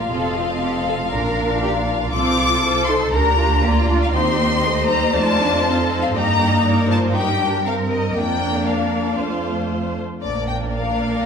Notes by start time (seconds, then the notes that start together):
Already playing: F4 F5
0.11 F1 C4 A4 D#5
0.37 F4
0.63 G4
0.87 A4
1.12 A#1 D4 A#4 D5
1.62 G4
1.88 F4
2.13 C2 C4 F4 A4 F5 D6
2.40 A4
2.63 F4 A4 C5
2.86 D#4 C6
3.12 D2 D4 G4 A#4 A#5
3.37 F4
3.62 A#3 F4 G4 D5
3.88 D4 F4
4.04 F5
4.13 D#2 C4 D#4 G4 C5 C6
4.39 A#3
4.63 A3 G4 C5 D#5
4.88 G3 A#5
5.13 F2 A3 F4 C5 D5 A5
5.38 D4
5.64 C4 A4 C5
5.90 C5
6.02 F5
6.14 G2 A#3 D#4 G4 D#5 A#5
6.39 D4 G4
6.64 D#4 A#4 D5
6.89 F4 C5 A5
7.13 D#4 G4 A#4 G5
7.41 D4
7.65 C4 A#4 F5
7.91 D#5
8.15 F2 A#3 D4 A#4 D5 G5
8.67 F5
9.19 F2 A3 F4 C5
10.23 A#1 A#3 D4 A#4 D5
10.48 G5
10.74 F5